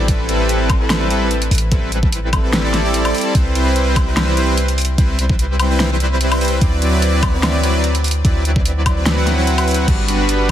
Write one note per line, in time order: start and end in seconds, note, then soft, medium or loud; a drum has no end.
0.00 1.49 A1 medium
0.08 0.26 G3 medium
0.08 0.26 C4 medium
0.08 0.26 E4 medium
0.08 0.26 A4 medium
0.08 0.26 B4 medium
0.08 kick loud
0.08 closed hi-hat medium
0.29 0.78 G3 loud
0.29 0.78 C4 loud
0.29 0.78 E4 medium
0.29 0.78 A4 loud
0.29 0.78 B4 loud
0.29 closed hi-hat medium
0.49 closed hi-hat medium
0.70 kick loud
0.70 closed hi-hat medium
0.70 high woodblock medium
0.80 1.08 G3 medium
0.80 1.08 C4 medium
0.80 1.08 E4 medium
0.80 1.08 A4 medium
0.80 1.08 B4 loud
0.90 snare loud
0.90 closed hi-hat medium
0.90 high woodblock medium
1.10 1.28 G3 loud
1.10 1.28 C4 medium
1.10 1.28 E4 medium
1.10 1.28 A4 medium
1.10 1.28 B4 loud
1.10 closed hi-hat medium
1.31 closed hi-hat medium
1.42 closed hi-hat medium
1.51 3.13 A1 medium
1.51 closed hi-hat medium
1.51 open hi-hat medium
1.58 closed hi-hat medium
1.72 1.90 G3 medium
1.72 1.90 C4 medium
1.72 1.90 E4 medium
1.72 1.90 A4 medium
1.72 1.90 B4 loud
1.72 kick loud
1.72 closed hi-hat medium
1.92 2.41 G3 medium
1.92 2.41 C4 medium
1.92 2.41 E4 medium
1.92 2.41 A4 medium
1.92 2.41 B4 medium
1.92 closed hi-hat medium
2.03 kick loud
2.12 closed hi-hat medium
2.33 kick medium
2.33 closed hi-hat medium
2.33 high woodblock medium
2.44 2.62 G3 medium
2.44 2.62 C4 medium
2.44 2.62 E4 medium
2.44 2.62 A4 medium
2.44 2.62 B4 medium
2.53 snare loud
2.53 closed hi-hat medium
2.64 2.82 G3 medium
2.64 2.82 C4 medium
2.64 2.82 E4 medium
2.64 2.82 A4 medium
2.64 2.82 D5 loud
2.74 snare medium
2.74 closed hi-hat medium
2.85 3.02 G3 loud
2.85 3.02 C4 loud
2.85 3.02 E4 medium
2.85 3.02 A4 medium
2.85 3.02 D5 loud
2.94 closed hi-hat medium
3.05 3.33 G3 medium
3.05 3.33 C4 medium
3.05 3.33 E4 medium
3.05 3.33 A4 medium
3.05 3.33 D5 loud
3.05 closed hi-hat medium
3.05 high woodblock medium
3.15 closed hi-hat medium
3.15 open hi-hat medium
3.21 closed hi-hat medium
3.35 4.96 C2 medium
3.35 3.53 G3 medium
3.35 3.53 C4 medium
3.35 3.53 E4 medium
3.35 3.53 B4 medium
3.35 3.53 C5 medium
3.35 kick loud
3.35 closed hi-hat medium
3.55 4.04 G3 loud
3.55 4.04 C4 medium
3.55 4.04 E4 loud
3.55 4.04 B4 loud
3.55 4.04 C5 loud
3.55 closed hi-hat medium
3.76 closed hi-hat medium
3.96 kick loud
3.96 closed hi-hat medium
3.96 high woodblock medium
4.07 4.35 G3 medium
4.07 4.35 C4 medium
4.07 4.35 E4 medium
4.07 4.35 B4 medium
4.07 4.35 C5 loud
4.17 snare loud
4.17 closed hi-hat medium
4.17 high woodblock medium
4.37 4.54 G3 loud
4.37 4.54 C4 medium
4.37 4.54 E4 medium
4.37 4.54 B4 medium
4.37 4.54 C5 loud
4.37 closed hi-hat medium
4.58 closed hi-hat medium
4.68 closed hi-hat medium
4.78 closed hi-hat medium
4.78 open hi-hat medium
4.85 closed hi-hat medium
4.98 6.60 C2 medium
4.98 5.16 G3 medium
4.98 5.16 C4 medium
4.98 5.16 E4 medium
4.98 5.16 B4 medium
4.98 5.16 C5 loud
4.98 kick loud
4.98 closed hi-hat medium
5.19 5.68 G3 medium
5.19 5.68 C4 medium
5.19 5.68 E4 medium
5.19 5.68 B4 medium
5.19 5.68 C5 medium
5.19 closed hi-hat medium
5.30 kick loud
5.39 closed hi-hat medium
5.60 closed hi-hat medium
5.60 high woodblock medium
5.70 5.88 G3 medium
5.70 5.88 C4 medium
5.70 5.88 E4 medium
5.70 5.88 B4 medium
5.70 5.88 C5 medium
5.80 snare loud
5.80 closed hi-hat medium
5.91 6.29 G3 medium
5.91 6.29 C4 medium
5.91 6.29 E4 medium
5.91 6.29 B4 medium
5.91 6.29 C5 medium
6.00 closed hi-hat medium
6.21 closed hi-hat medium
6.32 6.39 G3 medium
6.32 6.39 C4 medium
6.32 6.39 E4 medium
6.32 6.39 B4 medium
6.32 6.39 C5 medium
6.32 closed hi-hat medium
6.32 high woodblock medium
6.41 6.52 G3 medium
6.41 6.52 C4 medium
6.41 6.52 E4 medium
6.41 6.52 B4 medium
6.41 6.52 C5 loud
6.41 closed hi-hat medium
6.41 open hi-hat medium
6.48 closed hi-hat medium
6.61 8.23 D2 medium
6.61 6.80 F#3 medium
6.61 6.80 C4 medium
6.61 6.80 E4 medium
6.61 6.80 B4 medium
6.61 6.80 D5 medium
6.61 kick loud
6.61 closed hi-hat medium
6.82 7.31 F#3 loud
6.82 7.31 C4 medium
6.82 7.31 E4 medium
6.82 7.31 B4 medium
6.82 7.31 D5 loud
6.82 closed hi-hat medium
7.02 closed hi-hat medium
7.23 kick loud
7.23 closed hi-hat medium
7.23 high woodblock medium
7.33 7.61 F#3 medium
7.33 7.61 C4 medium
7.33 7.61 E4 medium
7.33 7.61 B4 medium
7.33 7.61 D5 loud
7.43 snare loud
7.43 closed hi-hat medium
7.43 high woodblock medium
7.63 7.81 F#3 loud
7.63 7.81 C4 medium
7.63 7.81 E4 medium
7.63 7.81 B4 medium
7.63 7.81 D5 loud
7.63 closed hi-hat medium
7.84 closed hi-hat medium
7.95 closed hi-hat medium
8.04 closed hi-hat medium
8.04 open hi-hat medium
8.11 closed hi-hat medium
8.25 9.86 D2 medium
8.25 8.43 F#3 medium
8.25 8.43 C4 medium
8.25 8.43 E4 medium
8.25 8.43 B4 medium
8.25 8.43 D5 loud
8.25 kick loud
8.25 closed hi-hat medium
8.45 8.94 F#3 medium
8.45 8.94 C4 medium
8.45 8.94 E4 medium
8.45 8.94 B4 medium
8.45 8.94 D5 medium
8.45 closed hi-hat medium
8.56 kick loud
8.66 closed hi-hat medium
8.86 kick medium
8.86 closed hi-hat medium
8.86 high woodblock medium
8.97 9.15 F#3 medium
8.97 9.15 C4 medium
8.97 9.15 E4 medium
8.97 9.15 B4 medium
8.97 9.15 D5 medium
9.06 snare loud
9.06 closed hi-hat medium
9.17 9.35 F#3 medium
9.17 9.35 C4 medium
9.17 9.35 E4 medium
9.17 9.35 B4 medium
9.17 9.35 F#5 loud
9.27 snare medium
9.27 closed hi-hat medium
9.38 9.55 F#3 loud
9.38 9.55 C4 loud
9.38 9.55 E4 medium
9.38 9.55 B4 medium
9.38 9.55 F#5 loud
9.47 closed hi-hat medium
9.58 9.86 F#3 medium
9.58 9.86 C4 medium
9.58 9.86 E4 medium
9.58 9.86 B4 medium
9.58 9.86 F#5 loud
9.58 closed hi-hat medium
9.58 high woodblock medium
9.68 closed hi-hat medium
9.68 open hi-hat medium
9.74 closed hi-hat medium
9.88 10.51 G1 medium
9.88 10.06 G3 medium
9.88 10.06 B3 medium
9.88 10.06 D4 medium
9.88 10.06 F#4 medium
9.88 10.06 B4 medium
9.88 kick loud
9.88 closed hi-hat medium
9.88 crash medium
10.08 10.51 G3 loud
10.08 10.51 B3 medium
10.08 10.51 D4 medium
10.08 10.51 F#4 medium
10.08 10.51 B4 loud
10.08 closed hi-hat medium
10.29 closed hi-hat medium